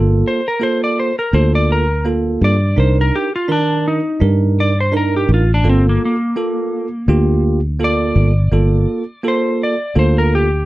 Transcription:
0.00 0.22 G1 medium
0.00 0.39 A#3 medium
0.00 0.40 F4 medium
0.00 0.40 A4 medium
0.28 0.46 C5 medium
0.48 0.62 A#4 medium
0.60 1.11 A#3 medium
0.60 1.11 F4 medium
0.60 1.12 A4 medium
0.60 0.82 C5 medium
0.84 0.98 D5 medium
0.99 1.18 C5 medium
1.19 1.34 A#4 medium
1.33 2.37 D2 medium
1.33 1.84 A#3 medium
1.33 1.84 F4 medium
1.33 1.84 A4 medium
1.33 1.53 C5 medium
1.55 1.70 D5 medium
1.72 2.06 A#4 medium
2.05 2.55 A#3 medium
2.05 2.56 F4 medium
2.05 2.56 A4 medium
2.41 2.74 G2 loud
2.41 2.78 D5 medium
2.76 3.10 C2 medium
2.76 3.27 D4 medium
2.76 3.28 D#4 medium
2.76 3.28 A#4 medium
2.76 2.98 C5 medium
3.01 3.15 A#4 medium
3.15 3.34 G4 medium
3.36 3.50 F4 medium
3.48 3.99 D#3 medium
3.48 3.99 D4 medium
3.48 3.85 D4 medium
3.48 4.00 A#4 medium
3.88 4.21 D#4 medium
4.20 5.25 G2 loud
4.20 4.71 D4 medium
4.20 4.71 D#4 medium
4.20 4.72 A#4 medium
4.60 4.78 D5 medium
4.80 4.95 C5 medium
4.92 5.43 D4 medium
4.92 5.43 D#4 medium
4.92 5.44 A#4 medium
4.97 5.14 A#4 medium
5.17 5.31 G4 medium
5.29 5.62 A1 loud
5.34 5.51 F4 medium
5.54 5.67 D4 medium
5.64 5.97 G1 medium
5.64 6.15 A#3 medium
5.64 6.15 F4 medium
5.64 6.15 A4 medium
5.69 5.86 C4 medium
5.89 6.03 A#3 medium
6.05 7.43 A#3 medium
6.36 6.87 A#3 medium
6.36 6.87 F4 medium
6.36 6.87 A4 medium
7.08 8.12 D2 loud
7.08 7.59 A#3 medium
7.08 7.59 F4 medium
7.08 7.59 G4 loud
7.79 8.30 A#3 medium
7.79 8.31 F4 medium
7.79 8.31 A4 medium
7.84 9.22 D5 loud
8.16 8.49 G1 loud
8.51 8.85 G1 medium
8.51 9.02 A#3 medium
8.51 9.03 F4 medium
8.51 9.03 A4 medium
9.23 9.74 A#3 medium
9.23 9.75 F4 medium
9.23 9.75 A4 medium
9.28 9.61 C5 medium
9.63 9.97 D5 medium
9.95 10.65 D2 medium
9.95 10.46 A#3 medium
9.95 10.46 F4 medium
9.95 10.47 A4 medium
9.95 10.17 C5 medium
10.18 10.33 A#4 medium
10.35 10.65 G4 medium

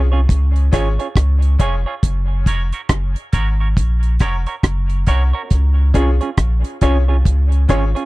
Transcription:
0.00 0.27 C2 medium
0.12 0.20 C#4 soft
0.12 0.20 F4 medium
0.12 0.20 G#4 medium
0.12 0.19 C#5 medium
0.29 0.71 C#2 medium
0.29 kick loud
0.29 closed hi-hat medium
0.56 closed hi-hat soft
0.72 0.98 G#1 medium
0.72 0.90 C#4 medium
0.72 0.87 C#4 medium
0.72 0.91 F4 medium
0.72 0.87 F4 medium
0.72 0.91 G#4 medium
0.72 0.88 G#4 medium
0.72 0.91 C#5 loud
0.72 0.88 C#5 medium
0.72 kick medium
0.72 cross-stick medium
0.72 closed hi-hat medium
0.99 1.07 C#4 soft
0.99 1.07 F4 soft
0.99 1.06 G#4 soft
0.99 1.07 G#4 soft
0.99 1.06 C#5 soft
0.99 1.06 C#5 medium
0.99 closed hi-hat soft
1.16 1.57 C#2 loud
1.16 kick loud
1.16 cross-stick loud
1.16 closed hi-hat medium
1.42 closed hi-hat soft
1.59 1.85 F1 medium
1.59 1.77 C#4 medium
1.59 1.74 C#4 medium
1.59 1.78 F4 medium
1.59 1.74 F4 medium
1.59 1.78 G#4 medium
1.59 1.75 G#4 medium
1.59 1.78 C#5 medium
1.59 1.75 C#5 medium
1.59 kick medium
1.59 closed hi-hat medium
1.86 1.94 C#4 medium
1.86 1.94 F4 medium
1.86 1.93 G#4 soft
1.86 1.94 G#4 medium
1.86 1.93 C#5 soft
1.86 1.93 C#5 medium
2.03 2.45 F#1 loud
2.03 kick loud
2.03 closed hi-hat medium
2.46 2.72 F1 medium
2.46 2.65 C#4 medium
2.46 2.61 C#4 medium
2.46 2.65 F#4 medium
2.46 2.62 F#4 medium
2.46 2.65 A#4 medium
2.46 2.62 A#4 medium
2.46 2.65 C#5 medium
2.46 2.62 C#5 medium
2.46 kick medium
2.46 closed hi-hat medium
2.73 2.81 C#4 medium
2.73 2.81 F#4 medium
2.73 2.81 A#4 medium
2.73 2.80 C#5 medium
2.73 closed hi-hat soft
2.89 3.15 F#1 medium
2.89 kick loud
2.89 cross-stick loud
2.89 closed hi-hat medium
3.16 closed hi-hat medium
3.33 3.75 G#1 loud
3.33 3.48 C#4 medium
3.33 3.52 C#4 medium
3.33 3.52 F#4 medium
3.33 3.48 F#4 medium
3.33 3.52 A#4 medium
3.33 3.48 A#4 medium
3.33 3.52 C#5 medium
3.33 3.48 C#5 medium
3.33 kick medium
3.33 closed hi-hat medium
3.60 3.68 C#4 soft
3.60 3.68 F#4 soft
3.60 3.68 A#4 soft
3.60 3.68 C#5 medium
3.77 4.19 A#1 medium
3.77 kick loud
3.77 closed hi-hat medium
4.03 closed hi-hat soft
4.19 4.46 F1 medium
4.19 4.39 C#4 medium
4.19 4.35 C#4 medium
4.19 4.39 F#4 medium
4.19 4.36 F#4 medium
4.19 4.39 A#4 medium
4.19 4.36 A#4 medium
4.19 4.39 C#5 loud
4.19 4.36 C#5 medium
4.19 kick medium
4.19 cross-stick medium
4.19 closed hi-hat medium
4.46 4.55 C#4 medium
4.46 4.55 F#4 soft
4.46 4.55 A#4 medium
4.46 4.54 A#4 soft
4.46 4.54 C#5 medium
4.46 4.54 C#5 soft
4.46 closed hi-hat soft
4.63 5.05 F#1 loud
4.63 kick loud
4.63 cross-stick loud
4.63 closed hi-hat medium
4.90 closed hi-hat soft
5.07 5.33 C2 medium
5.07 5.22 C#4 medium
5.07 5.26 C#4 medium
5.07 5.26 F#4 medium
5.07 5.22 F#4 medium
5.07 5.26 A#4 medium
5.07 5.22 A#4 medium
5.07 5.26 C#5 medium
5.07 5.23 C#5 medium
5.07 kick medium
5.07 closed hi-hat medium
5.33 5.42 C#4 medium
5.33 5.42 F#4 medium
5.33 5.41 A#4 medium
5.33 5.41 A#4 soft
5.33 5.41 C#5 medium
5.33 5.41 C#5 soft
5.50 5.93 C#2 loud
5.50 kick loud
5.50 closed hi-hat medium
5.94 6.20 C2 medium
5.94 6.09 C#4 medium
5.94 6.13 C#4 medium
5.94 6.13 F4 medium
5.94 6.09 F4 medium
5.94 6.09 G#4 medium
5.94 6.13 G#4 medium
5.94 6.13 C#5 medium
5.94 6.10 C#5 medium
5.94 kick medium
5.94 closed hi-hat medium
6.21 6.29 C#4 soft
6.21 6.29 F4 medium
6.21 6.29 G#4 medium
6.21 6.28 C#5 medium
6.21 closed hi-hat soft
6.37 6.64 A#1 medium
6.37 kick medium
6.37 cross-stick medium
6.37 closed hi-hat medium
6.64 closed hi-hat medium
6.81 7.23 C2 medium
6.81 7.00 C#4 medium
6.81 6.96 C#4 medium
6.81 7.00 F4 medium
6.81 6.97 F4 medium
6.81 7.00 G#4 medium
6.81 6.97 G#4 medium
6.81 7.01 C#5 medium
6.81 6.97 C#5 medium
6.81 kick medium
6.81 closed hi-hat medium
7.08 7.16 C#4 medium
7.08 7.16 F4 medium
7.08 7.16 G#4 medium
7.08 7.16 C#5 medium
7.25 7.67 C#2 medium
7.25 kick loud
7.25 closed hi-hat medium
7.52 closed hi-hat soft
7.68 7.95 G#1 medium
7.68 7.87 C#4 medium
7.68 7.83 C#4 medium
7.68 7.87 F4 medium
7.68 7.84 F4 medium
7.68 7.87 G#4 medium
7.68 7.84 G#4 medium
7.68 7.87 C#5 loud
7.68 7.84 C#5 medium
7.68 kick medium
7.68 cross-stick medium
7.68 closed hi-hat medium
7.95 8.03 C#4 soft
7.95 8.03 F4 medium
7.95 8.02 G#4 soft
7.95 8.03 G#4 medium
7.95 8.03 C#5 medium
7.95 8.02 C#5 soft
7.95 closed hi-hat soft

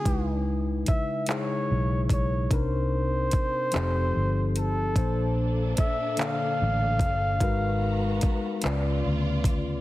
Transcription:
0.00 0.43 G#4 loud
0.05 0.84 C#2 medium
0.05 1.15 C#3 medium
0.05 1.15 G#3 medium
0.05 1.16 D#4 medium
0.05 1.16 E4 medium
0.05 1.16 B4 medium
0.05 kick medium
0.05 closed hi-hat medium
0.86 1.26 E5 medium
0.86 muted fingered electric bass stroke soft
0.86 kick medium
0.86 closed hi-hat medium
1.26 2.38 C#3 medium
1.26 2.38 G#3 medium
1.26 2.38 D#4 medium
1.26 2.38 E4 medium
1.26 2.39 G#4 medium
1.26 2.07 C#5 medium
1.26 clap loud
1.26 closed hi-hat medium
1.71 2.07 B1 medium
2.09 2.47 B1 medium
2.09 2.49 C#5 medium
2.09 kick medium
2.09 closed hi-hat medium
2.51 3.29 C2 loud
2.51 3.60 C3 medium
2.51 3.61 C4 medium
2.51 3.61 D4 medium
2.51 3.61 D#4 medium
2.51 3.61 A#4 medium
2.51 4.52 C5 loud
2.51 kick medium
2.51 closed hi-hat medium
3.31 muted fingered electric bass stroke soft
3.31 kick medium
3.31 closed hi-hat medium
3.72 4.11 F1 medium
3.72 4.82 F3 medium
3.72 4.83 C4 medium
3.72 4.83 D#4 medium
3.72 4.83 G4 medium
3.72 4.84 A4 medium
3.72 clap loud
3.72 closed hi-hat medium
4.16 4.93 G1 medium
4.56 5.48 A4 medium
4.56 closed hi-hat medium
4.95 5.74 A#1 loud
4.95 6.05 A#2 medium
4.95 7.38 A#3 medium
4.95 6.05 A#3 medium
4.95 7.38 D4 medium
4.95 6.06 D4 medium
4.95 7.38 A4 medium
4.95 6.06 A4 medium
4.95 6.06 C5 medium
4.95 kick loud
4.95 closed hi-hat medium
5.77 6.22 E5 loud
5.77 muted fingered electric bass stroke soft
5.77 kick medium
5.77 closed hi-hat medium
6.17 7.28 D3 medium
6.17 7.28 A#3 medium
6.17 7.28 D4 medium
6.17 7.28 A4 medium
6.17 7.29 D5 medium
6.17 9.05 F5 loud
6.17 clap loud
6.17 closed hi-hat medium
6.62 7.02 A1 medium
6.99 7.37 G1 loud
6.99 kick medium
6.99 closed hi-hat medium
7.40 8.19 G#1 loud
7.40 8.61 G#3 medium
7.40 8.50 G#3 medium
7.40 8.61 B3 medium
7.40 8.51 D#4 medium
7.40 8.62 F#4 medium
7.40 8.51 F#4 medium
7.40 8.51 A#4 medium
7.40 8.51 B4 loud
7.40 8.61 A#5 medium
7.40 kick medium
7.40 closed hi-hat medium
8.21 muted fingered electric bass stroke soft
8.21 kick medium
8.21 closed hi-hat medium
8.62 9.01 C#2 loud
8.62 9.81 C#3 medium
8.62 9.73 C#3 medium
8.62 9.81 B3 medium
8.62 9.73 C#4 medium
8.62 9.81 F4 medium
8.62 9.73 F4 medium
8.62 9.74 B4 medium
8.62 9.81 D5 medium
8.62 9.74 D5 medium
8.62 clap loud
8.62 closed hi-hat medium
9.06 9.81 D2 medium
9.44 kick medium
9.44 closed hi-hat medium

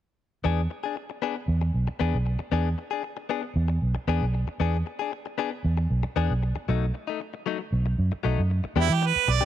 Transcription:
0.44 0.66 E2 medium
0.44 0.60 B3 medium
0.44 0.60 D4 medium
0.44 0.61 G#4 medium
0.70 muted clean electric guitar stroke soft
0.83 0.96 D4 soft
0.83 0.96 G#4 soft
0.96 muted clean electric guitar stroke soft
1.10 muted clean electric guitar stroke soft
1.22 1.36 B3 medium
1.22 1.36 D4 medium
1.22 1.35 G#4 medium
1.36 muted clean electric guitar stroke soft
1.48 1.70 E2 medium
1.61 muted clean electric guitar stroke soft
1.74 1.85 B1 medium
1.88 muted clean electric guitar stroke soft
1.88 muted fingered electric bass stroke soft
2.00 2.12 E2 medium
2.00 2.16 B3 medium
2.00 2.16 D4 medium
2.00 2.17 G#4 medium
2.14 2.36 B1 medium
2.26 muted clean electric guitar stroke soft
2.39 muted clean electric guitar stroke soft
2.52 2.74 E2 medium
2.52 2.68 B3 medium
2.52 2.68 D4 medium
2.52 2.69 G#4 medium
2.78 muted clean electric guitar stroke soft
2.91 3.03 D4 soft
2.91 3.03 G#4 medium
3.03 muted clean electric guitar stroke soft
3.17 muted clean electric guitar stroke soft
3.30 3.44 B3 medium
3.30 3.43 D4 medium
3.30 3.42 G#4 medium
3.43 muted clean electric guitar stroke soft
3.56 3.78 E2 loud
3.68 muted clean electric guitar stroke soft
3.82 3.93 B1 medium
3.95 muted clean electric guitar stroke soft
4.08 4.19 E2 medium
4.08 4.24 B3 medium
4.08 4.25 D4 medium
4.08 4.25 G#4 medium
4.22 4.43 B1 medium
4.34 muted clean electric guitar stroke soft
4.47 muted fingered electric bass stroke soft
4.47 muted clean electric guitar stroke soft
4.60 4.82 E2 medium
4.60 4.76 B3 medium
4.60 4.76 D4 medium
4.60 4.77 G#4 medium
4.86 muted clean electric guitar stroke soft
4.99 5.11 D4 soft
4.99 5.12 G#4 medium
5.12 muted clean electric guitar stroke soft
5.26 muted clean electric guitar stroke soft
5.38 5.52 B3 medium
5.38 5.51 D4 medium
5.38 5.50 G#4 medium
5.51 muted clean electric guitar stroke soft
5.65 5.86 E2 medium
5.78 muted clean electric guitar stroke soft
5.90 6.02 B1 medium
6.03 muted clean electric guitar stroke soft
6.16 6.28 E2 medium
6.16 6.32 B3 medium
6.16 6.33 D4 medium
6.16 6.33 G#4 medium
6.30 6.52 B1 medium
6.43 muted clean electric guitar stroke soft
6.56 muted clean electric guitar stroke soft
6.56 muted fingered electric bass stroke soft
6.69 6.90 B1 medium
6.69 6.85 F#3 medium
6.69 6.85 A3 medium
6.69 6.85 D#4 medium
6.94 muted clean electric guitar stroke soft
7.08 7.20 A3 soft
7.08 7.20 D#4 medium
7.20 muted clean electric guitar stroke soft
7.34 muted clean electric guitar stroke soft
7.46 7.60 F#3 medium
7.46 7.59 A3 medium
7.46 7.58 D#4 medium
7.59 muted clean electric guitar stroke soft
7.72 7.94 B1 medium
7.86 muted clean electric guitar stroke soft
7.98 8.10 F#2 medium
8.12 muted clean electric guitar stroke soft
8.12 muted fingered electric bass stroke soft
8.23 8.36 B1 medium
8.23 8.40 F#3 medium
8.23 8.40 A3 medium
8.23 8.41 D#4 medium
8.38 8.60 F#2 medium
8.50 muted clean electric guitar stroke soft
8.64 muted fingered electric bass stroke soft
8.64 muted clean electric guitar stroke soft
8.76 8.87 E2 medium
8.76 8.90 G#3 medium
8.76 8.89 B3 medium
8.76 8.89 D4 medium
8.76 8.88 G4 medium
8.81 8.95 E4 loud
8.89 9.11 E3 medium
8.89 muted clean electric guitar stroke soft
8.93 9.08 G4 medium
9.02 muted clean electric guitar stroke soft
9.06 9.34 B4 medium
9.16 muted fingered electric bass stroke soft
9.27 9.39 B1 medium
9.27 muted clean electric guitar stroke soft
9.32 9.43 D5 medium
9.41 9.45 D4 soft
9.41 9.45 G4 medium

